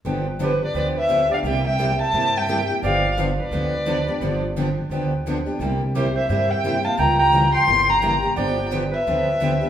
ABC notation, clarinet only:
X:1
M:4/4
L:1/8
Q:"Swing" 1/4=173
K:Gmix
V:1 name="Clarinet"
z2 G B B B2 d | e e2 e2 e2 z | d2 z B4- B- | B z6 z |
z2 G c c e2 f | g g2 g2 g2 z | d2 z B4- B |]